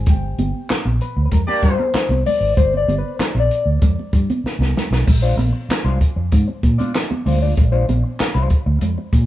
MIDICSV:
0, 0, Header, 1, 7, 480
1, 0, Start_track
1, 0, Tempo, 624350
1, 53, Time_signature, 4, 2, 24, 8
1, 7120, End_track
2, 0, Start_track
2, 0, Title_t, "Clean electric guitar"
2, 0, Program_c, 0, 27
2, 75, Note_on_c, 0, 67, 84
2, 514, Note_off_c, 0, 67, 0
2, 781, Note_on_c, 0, 71, 84
2, 955, Note_off_c, 0, 71, 0
2, 964, Note_on_c, 0, 71, 66
2, 1016, Note_off_c, 0, 71, 0
2, 1023, Note_on_c, 0, 70, 80
2, 1087, Note_off_c, 0, 70, 0
2, 1257, Note_on_c, 0, 72, 102
2, 1705, Note_off_c, 0, 72, 0
2, 1740, Note_on_c, 0, 74, 110
2, 1974, Note_off_c, 0, 74, 0
2, 1977, Note_on_c, 0, 72, 106
2, 2125, Note_off_c, 0, 72, 0
2, 2129, Note_on_c, 0, 74, 87
2, 2291, Note_off_c, 0, 74, 0
2, 2294, Note_on_c, 0, 71, 78
2, 2454, Note_off_c, 0, 71, 0
2, 2457, Note_on_c, 0, 70, 87
2, 2500, Note_off_c, 0, 70, 0
2, 2611, Note_on_c, 0, 74, 87
2, 2836, Note_off_c, 0, 74, 0
2, 4015, Note_on_c, 0, 72, 90
2, 4020, Note_on_c, 0, 65, 88
2, 4022, Note_on_c, 0, 56, 72
2, 4024, Note_on_c, 0, 62, 81
2, 4124, Note_off_c, 0, 56, 0
2, 4128, Note_off_c, 0, 62, 0
2, 4130, Note_off_c, 0, 65, 0
2, 4131, Note_off_c, 0, 72, 0
2, 4494, Note_on_c, 0, 72, 82
2, 4499, Note_on_c, 0, 65, 76
2, 4504, Note_on_c, 0, 62, 68
2, 4509, Note_on_c, 0, 56, 77
2, 4608, Note_off_c, 0, 56, 0
2, 4611, Note_off_c, 0, 72, 0
2, 4613, Note_off_c, 0, 65, 0
2, 4615, Note_off_c, 0, 62, 0
2, 5215, Note_on_c, 0, 74, 97
2, 5218, Note_on_c, 0, 65, 84
2, 5223, Note_on_c, 0, 56, 71
2, 5225, Note_on_c, 0, 62, 75
2, 5330, Note_off_c, 0, 56, 0
2, 5331, Note_off_c, 0, 74, 0
2, 5332, Note_off_c, 0, 65, 0
2, 5333, Note_off_c, 0, 62, 0
2, 5580, Note_on_c, 0, 56, 74
2, 5582, Note_on_c, 0, 62, 65
2, 5590, Note_on_c, 0, 65, 61
2, 5590, Note_on_c, 0, 72, 76
2, 5668, Note_off_c, 0, 56, 0
2, 5669, Note_off_c, 0, 62, 0
2, 5673, Note_off_c, 0, 65, 0
2, 5674, Note_off_c, 0, 72, 0
2, 5704, Note_on_c, 0, 74, 65
2, 5707, Note_on_c, 0, 65, 57
2, 5711, Note_on_c, 0, 62, 53
2, 5713, Note_on_c, 0, 56, 54
2, 5790, Note_off_c, 0, 74, 0
2, 5792, Note_off_c, 0, 65, 0
2, 5794, Note_off_c, 0, 62, 0
2, 5795, Note_off_c, 0, 56, 0
2, 5934, Note_on_c, 0, 65, 77
2, 5934, Note_on_c, 0, 72, 83
2, 5938, Note_on_c, 0, 62, 71
2, 5941, Note_on_c, 0, 56, 65
2, 6050, Note_off_c, 0, 56, 0
2, 6050, Note_off_c, 0, 65, 0
2, 6051, Note_off_c, 0, 72, 0
2, 6053, Note_off_c, 0, 62, 0
2, 6413, Note_on_c, 0, 72, 94
2, 6418, Note_on_c, 0, 65, 71
2, 6423, Note_on_c, 0, 62, 67
2, 6428, Note_on_c, 0, 56, 66
2, 6525, Note_off_c, 0, 56, 0
2, 6530, Note_off_c, 0, 62, 0
2, 6531, Note_off_c, 0, 65, 0
2, 6535, Note_off_c, 0, 72, 0
2, 7120, End_track
3, 0, Start_track
3, 0, Title_t, "Horn section"
3, 0, Program_c, 1, 61
3, 1128, Note_on_c, 1, 62, 96
3, 1128, Note_on_c, 1, 74, 104
3, 1130, Note_on_c, 1, 58, 100
3, 1132, Note_on_c, 1, 67, 112
3, 1437, Note_off_c, 1, 62, 0
3, 1437, Note_off_c, 1, 74, 0
3, 1438, Note_off_c, 1, 58, 0
3, 1439, Note_off_c, 1, 67, 0
3, 7120, End_track
4, 0, Start_track
4, 0, Title_t, "Fingered electric bass"
4, 0, Program_c, 2, 33
4, 51, Note_on_c, 2, 31, 99
4, 252, Note_off_c, 2, 31, 0
4, 295, Note_on_c, 2, 31, 98
4, 394, Note_off_c, 2, 31, 0
4, 656, Note_on_c, 2, 34, 90
4, 755, Note_off_c, 2, 34, 0
4, 896, Note_on_c, 2, 38, 87
4, 995, Note_off_c, 2, 38, 0
4, 1012, Note_on_c, 2, 41, 103
4, 1113, Note_off_c, 2, 41, 0
4, 1250, Note_on_c, 2, 43, 105
4, 1352, Note_off_c, 2, 43, 0
4, 1606, Note_on_c, 2, 36, 86
4, 1710, Note_off_c, 2, 36, 0
4, 1850, Note_on_c, 2, 32, 80
4, 1952, Note_off_c, 2, 32, 0
4, 1977, Note_on_c, 2, 31, 96
4, 2177, Note_off_c, 2, 31, 0
4, 2215, Note_on_c, 2, 31, 102
4, 2315, Note_off_c, 2, 31, 0
4, 2574, Note_on_c, 2, 34, 86
4, 2675, Note_off_c, 2, 34, 0
4, 2811, Note_on_c, 2, 38, 89
4, 2913, Note_off_c, 2, 38, 0
4, 2939, Note_on_c, 2, 41, 91
4, 3037, Note_off_c, 2, 41, 0
4, 3176, Note_on_c, 2, 43, 111
4, 3276, Note_off_c, 2, 43, 0
4, 3527, Note_on_c, 2, 36, 85
4, 3631, Note_off_c, 2, 36, 0
4, 3772, Note_on_c, 2, 35, 89
4, 3874, Note_off_c, 2, 35, 0
4, 3901, Note_on_c, 2, 34, 92
4, 4099, Note_off_c, 2, 34, 0
4, 4129, Note_on_c, 2, 34, 107
4, 4232, Note_off_c, 2, 34, 0
4, 4493, Note_on_c, 2, 36, 97
4, 4594, Note_off_c, 2, 36, 0
4, 4738, Note_on_c, 2, 41, 83
4, 4837, Note_off_c, 2, 41, 0
4, 4861, Note_on_c, 2, 44, 105
4, 4959, Note_off_c, 2, 44, 0
4, 5099, Note_on_c, 2, 46, 109
4, 5198, Note_off_c, 2, 46, 0
4, 5580, Note_on_c, 2, 38, 90
4, 5778, Note_off_c, 2, 38, 0
4, 5822, Note_on_c, 2, 34, 89
4, 6020, Note_off_c, 2, 34, 0
4, 6064, Note_on_c, 2, 34, 102
4, 6160, Note_off_c, 2, 34, 0
4, 6418, Note_on_c, 2, 36, 88
4, 6517, Note_off_c, 2, 36, 0
4, 6659, Note_on_c, 2, 38, 101
4, 6758, Note_off_c, 2, 38, 0
4, 6777, Note_on_c, 2, 41, 118
4, 6876, Note_off_c, 2, 41, 0
4, 7018, Note_on_c, 2, 46, 102
4, 7117, Note_off_c, 2, 46, 0
4, 7120, End_track
5, 0, Start_track
5, 0, Title_t, "Muted clean electric guitar strokes"
5, 3893, Note_on_c, 9, 29, 51
5, 3970, Note_off_c, 9, 29, 0
5, 4133, Note_on_c, 9, 29, 37
5, 4210, Note_off_c, 9, 29, 0
5, 4249, Note_on_c, 9, 29, 48
5, 4326, Note_off_c, 9, 29, 0
5, 4374, Note_on_c, 9, 29, 41
5, 4451, Note_off_c, 9, 29, 0
5, 4625, Note_on_c, 9, 29, 57
5, 4702, Note_off_c, 9, 29, 0
5, 4739, Note_on_c, 9, 29, 46
5, 4816, Note_off_c, 9, 29, 0
5, 4860, Note_on_c, 9, 29, 43
5, 4937, Note_off_c, 9, 29, 0
5, 4978, Note_on_c, 9, 29, 58
5, 5054, Note_off_c, 9, 29, 0
5, 5457, Note_on_c, 9, 29, 53
5, 5534, Note_off_c, 9, 29, 0
5, 5822, Note_on_c, 9, 29, 38
5, 5899, Note_off_c, 9, 29, 0
5, 6059, Note_on_c, 9, 29, 42
5, 6136, Note_off_c, 9, 29, 0
5, 6178, Note_on_c, 9, 29, 52
5, 6254, Note_off_c, 9, 29, 0
5, 6301, Note_on_c, 9, 29, 45
5, 6378, Note_off_c, 9, 29, 0
5, 6534, Note_on_c, 9, 29, 42
5, 6611, Note_off_c, 9, 29, 0
5, 6658, Note_on_c, 9, 29, 52
5, 6735, Note_off_c, 9, 29, 0
5, 6784, Note_on_c, 9, 29, 45
5, 6861, Note_off_c, 9, 29, 0
5, 6902, Note_on_c, 9, 29, 56
5, 6979, Note_off_c, 9, 29, 0
5, 7120, End_track
6, 0, Start_track
6, 0, Title_t, "Muted fingered electric bass strokes"
6, 543, Note_on_c, 9, 29, 46
6, 620, Note_off_c, 9, 29, 0
6, 1491, Note_on_c, 9, 29, 50
6, 1568, Note_off_c, 9, 29, 0
6, 2454, Note_on_c, 9, 29, 50
6, 2531, Note_off_c, 9, 29, 0
6, 3413, Note_on_c, 9, 29, 49
6, 3490, Note_off_c, 9, 29, 0
6, 4373, Note_on_c, 9, 29, 47
6, 4450, Note_off_c, 9, 29, 0
6, 6306, Note_on_c, 9, 29, 47
6, 6383, Note_off_c, 9, 29, 0
6, 7120, End_track
7, 0, Start_track
7, 0, Title_t, "Drums"
7, 49, Note_on_c, 9, 42, 83
7, 53, Note_on_c, 9, 36, 122
7, 62, Note_on_c, 9, 62, 33
7, 62, Note_on_c, 9, 64, 77
7, 126, Note_off_c, 9, 42, 0
7, 130, Note_off_c, 9, 36, 0
7, 139, Note_off_c, 9, 62, 0
7, 139, Note_off_c, 9, 64, 0
7, 296, Note_on_c, 9, 42, 62
7, 300, Note_on_c, 9, 63, 86
7, 373, Note_off_c, 9, 42, 0
7, 377, Note_off_c, 9, 63, 0
7, 535, Note_on_c, 9, 42, 93
7, 538, Note_on_c, 9, 62, 36
7, 540, Note_on_c, 9, 38, 111
7, 540, Note_on_c, 9, 39, 94
7, 612, Note_off_c, 9, 42, 0
7, 615, Note_off_c, 9, 62, 0
7, 617, Note_off_c, 9, 38, 0
7, 617, Note_off_c, 9, 39, 0
7, 661, Note_on_c, 9, 62, 33
7, 661, Note_on_c, 9, 63, 49
7, 738, Note_off_c, 9, 62, 0
7, 738, Note_off_c, 9, 63, 0
7, 777, Note_on_c, 9, 42, 72
7, 854, Note_off_c, 9, 42, 0
7, 1011, Note_on_c, 9, 42, 100
7, 1014, Note_on_c, 9, 36, 106
7, 1021, Note_on_c, 9, 64, 72
7, 1088, Note_off_c, 9, 42, 0
7, 1091, Note_off_c, 9, 36, 0
7, 1098, Note_off_c, 9, 64, 0
7, 1140, Note_on_c, 9, 62, 36
7, 1217, Note_off_c, 9, 62, 0
7, 1251, Note_on_c, 9, 36, 102
7, 1260, Note_on_c, 9, 42, 92
7, 1328, Note_off_c, 9, 36, 0
7, 1336, Note_off_c, 9, 42, 0
7, 1378, Note_on_c, 9, 63, 82
7, 1455, Note_off_c, 9, 63, 0
7, 1494, Note_on_c, 9, 42, 96
7, 1498, Note_on_c, 9, 38, 125
7, 1498, Note_on_c, 9, 39, 93
7, 1498, Note_on_c, 9, 62, 35
7, 1571, Note_off_c, 9, 42, 0
7, 1575, Note_off_c, 9, 38, 0
7, 1575, Note_off_c, 9, 39, 0
7, 1575, Note_off_c, 9, 62, 0
7, 1623, Note_on_c, 9, 62, 34
7, 1623, Note_on_c, 9, 63, 79
7, 1700, Note_off_c, 9, 62, 0
7, 1700, Note_off_c, 9, 63, 0
7, 1738, Note_on_c, 9, 64, 76
7, 1739, Note_on_c, 9, 46, 77
7, 1815, Note_off_c, 9, 64, 0
7, 1816, Note_off_c, 9, 46, 0
7, 1977, Note_on_c, 9, 36, 109
7, 1978, Note_on_c, 9, 64, 80
7, 1981, Note_on_c, 9, 42, 100
7, 2054, Note_off_c, 9, 36, 0
7, 2055, Note_off_c, 9, 64, 0
7, 2058, Note_off_c, 9, 42, 0
7, 2105, Note_on_c, 9, 62, 35
7, 2182, Note_off_c, 9, 62, 0
7, 2217, Note_on_c, 9, 63, 79
7, 2224, Note_on_c, 9, 42, 64
7, 2294, Note_off_c, 9, 63, 0
7, 2301, Note_off_c, 9, 42, 0
7, 2458, Note_on_c, 9, 42, 96
7, 2460, Note_on_c, 9, 62, 40
7, 2464, Note_on_c, 9, 38, 116
7, 2464, Note_on_c, 9, 39, 90
7, 2535, Note_off_c, 9, 42, 0
7, 2537, Note_off_c, 9, 62, 0
7, 2540, Note_off_c, 9, 38, 0
7, 2540, Note_off_c, 9, 39, 0
7, 2582, Note_on_c, 9, 63, 47
7, 2659, Note_off_c, 9, 63, 0
7, 2700, Note_on_c, 9, 42, 77
7, 2777, Note_off_c, 9, 42, 0
7, 2935, Note_on_c, 9, 42, 104
7, 2937, Note_on_c, 9, 36, 108
7, 2941, Note_on_c, 9, 62, 36
7, 2941, Note_on_c, 9, 64, 79
7, 3011, Note_off_c, 9, 42, 0
7, 3014, Note_off_c, 9, 36, 0
7, 3018, Note_off_c, 9, 62, 0
7, 3018, Note_off_c, 9, 64, 0
7, 3070, Note_on_c, 9, 62, 36
7, 3147, Note_off_c, 9, 62, 0
7, 3175, Note_on_c, 9, 36, 96
7, 3185, Note_on_c, 9, 42, 89
7, 3252, Note_off_c, 9, 36, 0
7, 3262, Note_off_c, 9, 42, 0
7, 3304, Note_on_c, 9, 42, 54
7, 3306, Note_on_c, 9, 63, 87
7, 3380, Note_off_c, 9, 42, 0
7, 3382, Note_off_c, 9, 63, 0
7, 3428, Note_on_c, 9, 62, 35
7, 3430, Note_on_c, 9, 38, 66
7, 3504, Note_off_c, 9, 62, 0
7, 3506, Note_off_c, 9, 38, 0
7, 3542, Note_on_c, 9, 62, 33
7, 3542, Note_on_c, 9, 63, 83
7, 3552, Note_on_c, 9, 38, 65
7, 3618, Note_off_c, 9, 62, 0
7, 3618, Note_off_c, 9, 63, 0
7, 3629, Note_off_c, 9, 38, 0
7, 3661, Note_on_c, 9, 64, 81
7, 3670, Note_on_c, 9, 38, 86
7, 3738, Note_off_c, 9, 64, 0
7, 3747, Note_off_c, 9, 38, 0
7, 3787, Note_on_c, 9, 38, 90
7, 3864, Note_off_c, 9, 38, 0
7, 3902, Note_on_c, 9, 36, 114
7, 3903, Note_on_c, 9, 49, 106
7, 3906, Note_on_c, 9, 62, 37
7, 3906, Note_on_c, 9, 64, 74
7, 3979, Note_off_c, 9, 36, 0
7, 3979, Note_off_c, 9, 49, 0
7, 3983, Note_off_c, 9, 62, 0
7, 3983, Note_off_c, 9, 64, 0
7, 4139, Note_on_c, 9, 63, 80
7, 4144, Note_on_c, 9, 42, 70
7, 4216, Note_off_c, 9, 63, 0
7, 4221, Note_off_c, 9, 42, 0
7, 4384, Note_on_c, 9, 62, 41
7, 4386, Note_on_c, 9, 42, 95
7, 4392, Note_on_c, 9, 38, 113
7, 4392, Note_on_c, 9, 39, 83
7, 4461, Note_off_c, 9, 62, 0
7, 4463, Note_off_c, 9, 42, 0
7, 4468, Note_off_c, 9, 38, 0
7, 4468, Note_off_c, 9, 39, 0
7, 4507, Note_on_c, 9, 62, 30
7, 4584, Note_off_c, 9, 62, 0
7, 4620, Note_on_c, 9, 36, 100
7, 4624, Note_on_c, 9, 42, 77
7, 4697, Note_off_c, 9, 36, 0
7, 4701, Note_off_c, 9, 42, 0
7, 4857, Note_on_c, 9, 42, 109
7, 4862, Note_on_c, 9, 36, 116
7, 4866, Note_on_c, 9, 62, 37
7, 4866, Note_on_c, 9, 64, 71
7, 4934, Note_off_c, 9, 42, 0
7, 4938, Note_off_c, 9, 36, 0
7, 4943, Note_off_c, 9, 62, 0
7, 4943, Note_off_c, 9, 64, 0
7, 4988, Note_on_c, 9, 62, 36
7, 5064, Note_off_c, 9, 62, 0
7, 5099, Note_on_c, 9, 36, 97
7, 5104, Note_on_c, 9, 42, 84
7, 5176, Note_off_c, 9, 36, 0
7, 5181, Note_off_c, 9, 42, 0
7, 5223, Note_on_c, 9, 42, 60
7, 5230, Note_on_c, 9, 63, 90
7, 5300, Note_off_c, 9, 42, 0
7, 5307, Note_off_c, 9, 63, 0
7, 5342, Note_on_c, 9, 42, 105
7, 5346, Note_on_c, 9, 38, 123
7, 5346, Note_on_c, 9, 39, 100
7, 5347, Note_on_c, 9, 62, 33
7, 5418, Note_off_c, 9, 42, 0
7, 5423, Note_off_c, 9, 38, 0
7, 5423, Note_off_c, 9, 39, 0
7, 5424, Note_off_c, 9, 62, 0
7, 5465, Note_on_c, 9, 62, 33
7, 5465, Note_on_c, 9, 63, 72
7, 5541, Note_off_c, 9, 62, 0
7, 5541, Note_off_c, 9, 63, 0
7, 5584, Note_on_c, 9, 46, 79
7, 5584, Note_on_c, 9, 64, 80
7, 5661, Note_off_c, 9, 46, 0
7, 5661, Note_off_c, 9, 64, 0
7, 5821, Note_on_c, 9, 42, 98
7, 5824, Note_on_c, 9, 36, 116
7, 5833, Note_on_c, 9, 62, 35
7, 5833, Note_on_c, 9, 64, 75
7, 5898, Note_off_c, 9, 42, 0
7, 5901, Note_off_c, 9, 36, 0
7, 5910, Note_off_c, 9, 62, 0
7, 5910, Note_off_c, 9, 64, 0
7, 6064, Note_on_c, 9, 42, 70
7, 6068, Note_on_c, 9, 63, 84
7, 6141, Note_off_c, 9, 42, 0
7, 6144, Note_off_c, 9, 63, 0
7, 6300, Note_on_c, 9, 42, 93
7, 6305, Note_on_c, 9, 38, 108
7, 6305, Note_on_c, 9, 39, 105
7, 6377, Note_off_c, 9, 42, 0
7, 6382, Note_off_c, 9, 38, 0
7, 6382, Note_off_c, 9, 39, 0
7, 6426, Note_on_c, 9, 62, 31
7, 6503, Note_off_c, 9, 62, 0
7, 6536, Note_on_c, 9, 42, 77
7, 6539, Note_on_c, 9, 36, 98
7, 6612, Note_off_c, 9, 42, 0
7, 6616, Note_off_c, 9, 36, 0
7, 6775, Note_on_c, 9, 42, 114
7, 6779, Note_on_c, 9, 64, 79
7, 6851, Note_off_c, 9, 42, 0
7, 6856, Note_off_c, 9, 64, 0
7, 6903, Note_on_c, 9, 62, 34
7, 6980, Note_off_c, 9, 62, 0
7, 7017, Note_on_c, 9, 36, 102
7, 7023, Note_on_c, 9, 42, 88
7, 7094, Note_off_c, 9, 36, 0
7, 7100, Note_off_c, 9, 42, 0
7, 7120, End_track
0, 0, End_of_file